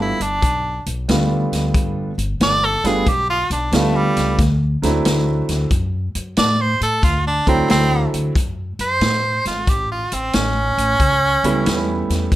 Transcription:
0.00 0.12 G1 medium
0.00 0.16 G3 medium
0.00 0.16 A3 medium
0.00 0.16 B3 medium
0.00 0.16 D4 medium
0.00 0.24 E4 medium
0.00 0.17 F4 medium
0.20 0.38 G1 medium
0.20 0.85 D4 loud
0.20 closed hi-hat medium
0.42 0.78 B1 medium
0.42 kick loud
0.42 closed hi-hat medium
0.86 1.04 B1 medium
0.86 closed hi-hat medium
1.08 1.44 D2 medium
1.08 2.10 G3 medium
1.08 2.10 A3 medium
1.08 2.10 B3 medium
1.08 2.10 D4 medium
1.08 2.11 F4 medium
1.08 snare loud
1.08 closed hi-hat medium
1.52 1.70 D2 medium
1.52 snare soft
1.52 closed hi-hat medium
1.74 2.10 G1 medium
1.74 kick loud
1.74 closed hi-hat medium
2.18 2.36 G1 medium
2.18 closed hi-hat medium
2.40 2.76 G1 medium
2.40 2.66 D5 loud
2.40 snare loud
2.40 closed hi-hat medium
2.65 2.88 A4 loud
2.84 3.02 G1 medium
2.84 3.04 G3 medium
2.84 3.05 A3 medium
2.84 3.05 B3 medium
2.84 3.05 D4 medium
2.84 3.05 F4 medium
2.84 3.10 G#4 medium
2.84 snare soft
2.84 closed hi-hat medium
3.06 3.42 B1 medium
3.06 3.29 G4 loud
3.06 kick loud
3.06 closed hi-hat medium
3.30 3.51 F4 loud
3.50 3.69 B1 medium
3.50 3.76 D4 medium
3.50 closed hi-hat medium
3.72 4.08 D2 medium
3.72 4.39 G3 medium
3.72 4.39 A3 medium
3.72 3.98 A3 medium
3.72 4.40 B3 medium
3.72 4.40 D4 medium
3.72 4.40 F4 medium
3.72 snare loud
3.72 closed hi-hat medium
3.97 4.39 G3 loud
4.17 4.35 C#2 medium
4.17 snare soft
4.17 closed hi-hat medium
4.39 4.74 D2 medium
4.39 kick loud
4.39 snare soft
4.39 closed hi-hat medium
4.82 5.01 D2 medium
4.82 5.66 F#3 medium
4.82 5.67 A3 medium
4.82 5.67 C4 medium
4.82 5.67 D4 medium
4.82 5.68 E4 medium
4.82 snare soft
4.82 closed hi-hat medium
5.05 5.41 D2 medium
5.05 snare loud
5.05 closed hi-hat medium
5.49 5.67 D2 medium
5.49 snare soft
5.49 closed hi-hat medium
5.71 6.07 F#2 medium
5.71 kick loud
5.71 closed hi-hat medium
6.15 6.33 F#2 medium
6.15 closed hi-hat medium
6.37 6.73 A2 medium
6.37 6.63 D5 loud
6.37 snare loud
6.37 closed hi-hat medium
6.61 6.82 C5 loud
6.81 6.99 A2 medium
6.81 7.03 A4 loud
6.81 closed hi-hat medium
7.03 7.39 D2 medium
7.03 7.25 F4 loud
7.03 kick loud
7.03 snare soft
7.03 closed hi-hat medium
7.27 7.48 D4 loud
7.47 7.65 D2 medium
7.47 8.31 F#3 medium
7.47 8.31 A3 medium
7.47 8.31 C4 medium
7.47 7.70 C4 loud
7.47 8.31 D4 medium
7.47 8.32 E4 medium
7.47 kick medium
7.47 closed hi-hat medium
7.69 8.05 D2 medium
7.69 8.13 C4 loud
7.69 snare loud
7.69 closed hi-hat medium
8.14 8.32 D2 medium
8.14 closed hi-hat medium
8.35 8.71 F#2 medium
8.35 kick loud
8.35 closed hi-hat medium
8.79 8.97 F#2 medium
8.79 9.44 C5 loud
8.79 closed hi-hat medium
9.01 9.37 A2 medium
9.01 snare loud
9.01 closed hi-hat medium
9.45 9.64 G#1 medium
9.45 9.71 F4 medium
9.45 snare soft
9.45 closed hi-hat medium
9.67 10.03 A1 medium
9.67 9.90 G4 loud
9.67 kick loud
9.67 closed hi-hat medium
9.92 10.15 F4 medium
10.12 10.30 A1 medium
10.12 10.36 C4 medium
10.12 closed hi-hat medium
10.33 10.70 A1 medium
10.33 12.28 C#4 loud
10.33 snare loud
10.33 closed hi-hat medium
10.78 10.96 A1 medium
10.78 closed hi-hat medium
11.00 11.35 C#2 medium
11.00 kick loud
11.00 closed hi-hat medium
11.44 11.62 C#2 medium
11.44 12.28 G3 medium
11.44 12.28 A3 medium
11.44 12.28 B3 medium
11.44 12.29 C#4 medium
11.44 12.29 E4 medium
11.44 closed hi-hat medium
11.66 12.02 E2 medium
11.66 snare loud
11.66 closed hi-hat medium
12.10 12.28 E2 medium
12.10 snare soft
12.10 closed hi-hat medium
12.32 12.36 A1 loud
12.32 kick loud
12.32 closed hi-hat medium

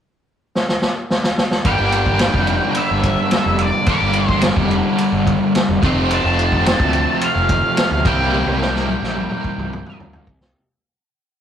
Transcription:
0.55 snare medium
0.69 snare medium
0.82 snare medium
1.10 snare medium
1.24 snare medium
1.38 snare medium
1.51 snare medium
1.65 1.77 G1 medium
1.65 3.86 G2 medium
1.65 3.86 D3 medium
1.65 3.89 G3 medium
1.65 3.87 A#3 medium
1.65 3.88 D4 medium
1.65 2.73 G5 loud
1.65 kick medium
1.65 ride medium
1.69 3.91 G4 medium
1.79 2.28 G1 medium
1.92 ride medium
2.06 kick medium
2.19 snare medium
2.19 ride medium
2.34 2.59 F1 medium
2.34 kick medium
2.47 ride medium
2.75 3.63 E5 medium
2.75 ride medium
2.91 3.15 G1 medium
3.03 kick medium
3.03 ride medium
3.31 snare loud
3.31 ride medium
3.46 3.70 F1 medium
3.59 3.87 D5 medium
3.59 ride medium
3.86 5.81 G2 medium
3.86 5.81 D3 medium
3.86 5.83 G3 medium
3.86 4.29 D5 medium
3.86 kick medium
3.86 ride medium
3.90 5.82 A#3 medium
3.90 5.82 D4 medium
3.90 5.85 G4 medium
4.01 4.50 G1 medium
4.13 ride medium
4.29 4.40 C5 medium
4.29 kick medium
4.41 snare loud
4.41 ride medium
4.56 4.81 F1 medium
4.56 kick medium
4.71 ride soft
4.98 ride medium
5.12 5.37 G1 medium
5.27 kick medium
5.27 ride soft
5.55 snare medium
5.55 ride medium
5.68 5.81 F1 medium
5.82 6.19 F1 medium
5.82 8.03 F2 medium
5.82 8.04 C3 medium
5.82 8.04 F3 medium
5.82 8.05 A3 medium
5.82 8.09 C4 medium
5.82 8.05 F4 medium
5.82 kick medium
5.82 ride medium
6.11 7.24 A5 loud
6.11 ride medium
6.24 6.73 F1 medium
6.39 ride medium
6.52 kick medium
6.66 snare loud
6.66 ride medium
6.80 7.04 D2 medium
6.80 kick medium
6.93 ride medium
7.21 8.06 F5 medium
7.21 ride medium
7.35 7.60 F1 medium
7.49 kick medium
7.49 ride medium
7.77 snare loud
7.77 ride medium
7.91 8.03 D2 medium
8.05 8.42 C2 medium
8.05 10.25 C3 medium
8.05 10.26 G3 medium
8.05 10.27 A#3 medium
8.05 9.96 G5 medium
8.05 kick medium
8.05 ride medium
8.09 10.28 E4 medium
8.33 high tom soft
8.46 8.96 C2 medium
8.46 high tom soft
8.62 snare medium
8.76 snare medium
8.88 mid tom medium
9.03 9.27 A#1 medium
9.03 snare medium
9.16 mid tom medium
9.31 mid tom medium
9.44 kick medium
9.58 9.82 C2 medium
9.58 mid tom medium
9.73 mid tom medium
9.86 mid tom medium
10.00 10.25 D2 medium
10.00 floor tom medium
10.13 floor tom medium
10.27 10.52 C2 medium
10.27 kick medium
10.41 snare medium

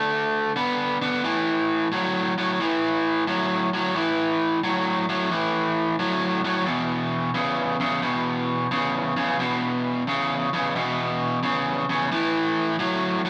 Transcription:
0.00 0.52 D3 medium
0.00 0.52 A3 medium
0.56 0.97 D3 medium
0.56 0.97 B3 loud
1.01 1.22 D3 medium
1.01 1.22 B3 medium
1.24 1.87 A2 medium
1.24 1.88 E3 medium
1.92 2.33 A2 medium
1.92 2.33 F#3 medium
2.38 2.58 A2 medium
2.38 2.58 F#3 medium
2.60 3.23 A2 medium
2.60 3.24 E3 medium
3.27 3.69 A2 medium
3.27 3.69 F#3 medium
3.73 3.93 A2 medium
3.73 3.94 F#3 medium
3.95 4.59 A2 medium
3.95 4.59 E3 medium
4.63 5.05 A2 medium
4.63 5.05 F#3 medium
5.09 5.29 A2 medium
5.09 5.29 F#3 medium
5.31 5.95 A2 medium
5.31 5.95 E3 medium
5.99 6.41 A2 medium
5.99 6.41 F#3 medium
6.44 6.65 A2 medium
6.44 6.65 F#3 medium
6.66 7.30 E2 medium
6.66 7.31 B2 medium
7.34 7.76 E2 medium
7.34 7.76 C#3 medium
7.80 8.01 E2 medium
7.80 8.01 C#3 medium
8.02 8.66 E2 medium
8.02 8.67 B2 medium
8.71 9.13 E2 medium
8.71 9.13 C#3 medium
9.16 9.37 E2 medium
9.16 9.37 C#3 medium
9.39 10.03 E2 medium
9.39 10.03 B2 medium
10.07 10.49 E2 medium
10.07 10.49 C#3 medium
10.53 10.73 E2 medium
10.53 10.74 C#3 medium
10.75 11.39 E2 medium
10.75 11.39 B2 medium
11.43 11.85 E2 medium
11.43 11.85 C#3 medium
11.89 12.09 E2 medium
11.89 12.10 C#3 medium
12.12 12.75 A2 medium
12.12 12.76 E3 medium
12.79 13.21 A2 medium
12.79 13.21 F#3 loud
13.25 13.30 A2 medium
13.25 13.30 F#3 medium

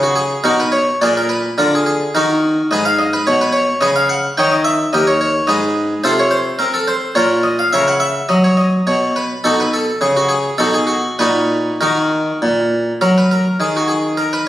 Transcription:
0.00 0.34 C#3 soft
0.00 0.17 F#4 medium
0.16 0.40 G#4 medium
0.44 0.90 B2 medium
0.44 0.59 D#4 medium
0.44 0.59 F#4 medium
0.44 0.59 A#4 medium
0.60 0.74 B4 medium
0.72 0.97 C#5 medium
1.02 1.47 A#2 medium
1.02 1.16 G#4 medium
1.02 1.16 A#4 medium
1.02 1.16 D5 medium
1.17 1.31 A#4 medium
1.29 1.54 B4 medium
1.58 2.03 D3 medium
1.58 1.72 D4 medium
1.58 1.72 F4 medium
1.58 1.73 A#4 medium
1.75 1.85 G#4 medium
1.86 2.15 G#4 medium
2.15 2.60 D#3 medium
2.15 2.68 D#4 medium
2.15 2.68 F#4 medium
2.15 2.63 A#4 medium
2.71 3.16 G#2 medium
2.71 2.85 G#4 medium
2.71 2.85 B4 medium
2.71 2.85 D#5 medium
2.85 3.00 F5 medium
2.99 3.13 D#5 medium
3.13 3.27 B4 medium
3.27 3.72 B2 medium
3.27 3.41 C#5 medium
3.41 3.55 B4 medium
3.52 3.81 C#5 medium
3.81 4.26 C#3 medium
3.81 3.95 G#4 medium
3.81 3.95 B4 medium
3.81 3.96 D#5 medium
3.96 4.10 F5 medium
4.09 4.34 F#5 medium
4.37 4.83 D#3 medium
4.37 4.52 C#5 medium
4.37 4.50 D#5 medium
4.37 4.52 G5 medium
4.52 4.66 D#5 medium
4.65 4.89 E5 medium
4.93 5.38 D#2 medium
4.93 5.07 G4 medium
4.93 5.07 A#4 medium
4.93 5.08 D#5 medium
5.07 5.20 C#5 medium
5.21 5.49 C#5 medium
5.47 5.93 G#2 medium
5.47 6.01 G#4 medium
5.47 6.01 B4 medium
5.47 5.95 D#5 medium
6.04 6.49 C3 medium
6.04 6.18 F4 medium
6.04 6.18 A4 medium
6.04 6.18 C5 medium
6.19 6.33 C#5 medium
6.31 6.60 C5 medium
6.59 7.05 C4 medium
6.59 6.74 A#4 medium
6.74 6.88 A4 medium
6.88 7.16 C5 medium
7.15 7.61 A#2 medium
7.15 7.43 F4 medium
7.15 7.43 A#4 medium
7.15 7.44 C#5 medium
7.43 7.58 D#5 medium
7.59 7.73 F5 medium
7.73 8.19 C#3 medium
7.73 7.87 A#4 medium
7.73 7.87 C#5 medium
7.73 7.87 E5 medium
7.88 8.02 F#5 medium
8.00 8.29 E5 medium
8.29 8.75 F#3 medium
8.29 8.44 D#5 medium
8.44 8.59 C#5 medium
8.57 8.82 D#5 medium
8.87 9.32 B2 medium
8.87 9.15 C#5 medium
9.16 9.44 B4 medium
9.44 9.90 B2 medium
9.44 9.58 D#4 medium
9.44 9.58 F#4 medium
9.44 9.58 A4 medium
9.60 9.73 B4 medium
9.74 9.97 A4 medium
10.01 10.48 C#3 medium
10.01 10.15 G#4 medium
10.17 10.30 F#4 medium
10.29 10.59 G#4 medium
10.58 11.07 B2 medium
10.58 10.73 D#4 medium
10.58 10.73 F#4 soft
10.58 10.74 A4 medium
10.74 10.89 G#4 medium
10.87 11.14 F#4 medium
11.19 11.69 A#2 soft
11.19 11.78 D#4 soft
11.19 11.78 F#4 soft
11.19 11.72 B4 medium
11.81 12.30 D#3 soft
11.81 12.39 D#4 soft
11.81 12.38 F#4 soft
11.81 12.33 A#4 medium
12.42 12.90 A#2 soft
13.01 13.43 F#3 medium
13.01 13.16 A#4 medium
13.18 13.32 B4 medium
13.31 13.56 A#4 medium
13.60 14.42 D#3 medium
13.60 13.75 G#4 medium
13.77 13.90 F#4 medium
13.88 14.12 G#4 medium
14.17 14.32 A#4 medium
14.33 14.46 B4 medium

